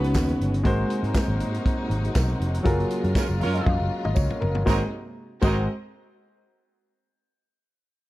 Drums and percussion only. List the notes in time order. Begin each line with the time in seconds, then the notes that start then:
0.04 closed hi-hat
0.14 kick, snare, clap, tambourine
0.28 closed hi-hat
0.41 closed hi-hat
0.54 closed hi-hat
0.65 kick, closed hi-hat
0.90 closed hi-hat
1.04 closed hi-hat
1.15 kick, snare, clap, tambourine
1.40 closed hi-hat
1.54 closed hi-hat
1.66 kick, closed hi-hat
1.91 closed hi-hat
2.04 closed hi-hat
2.15 kick, snare, clap, tambourine
2.41 closed hi-hat
2.54 closed hi-hat
2.65 kick, closed hi-hat
2.80 closed hi-hat
2.90 closed hi-hat
3.04 closed hi-hat
3.15 kick, snare, clap, tambourine
3.41 open hi-hat
3.55 closed hi-hat
3.66 kick, high tom
4.05 mid tom
4.16 kick, tambourine
4.30 mid tom
4.42 floor tom
4.55 floor tom
4.67 kick, snare, tambourine
5.42 kick, crash, tambourine